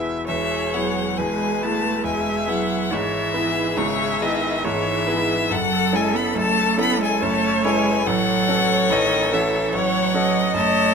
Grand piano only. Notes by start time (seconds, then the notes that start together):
Already playing: E1 E2 B3 E4 G#4
0.29 E1 E2
0.75 B3 E4 G#4
1.18 E1 E2
1.62 B3 E4 G#4
2.04 E1 E2
2.47 B3 E4 G#4
2.91 G#1 G#2
3.34 B3 E4 G#4
3.77 G#1 G#2
4.21 B3 E4 G#4
4.65 G#1 G#2
5.07 B3 E4 G#4
5.49 F#1 F#2
5.93 C#4 E4 A4
6.35 F#1 F#2
6.77 C#4 E4 A4
7.22 F#1 F#2
7.65 C#4 E4 A4
8.06 A1 A2
8.49 C#4 F#4 A4
8.90 A1 A2
9.33 C#4 F#4 A4
9.73 A1 A2
10.14 C#4 F#4 A4
10.54 F#1 F#2